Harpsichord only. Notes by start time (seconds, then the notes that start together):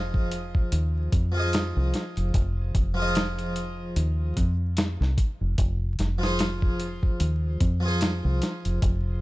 Already playing: F3 F4 G#4 D#5
1.32 F3 F4
1.37 G#4 D#5
2.94 F3 F4
2.99 G#4 D#5
6.18 F3 F4
6.24 G#4 C5
7.80 F3 F4
7.85 G#4 C5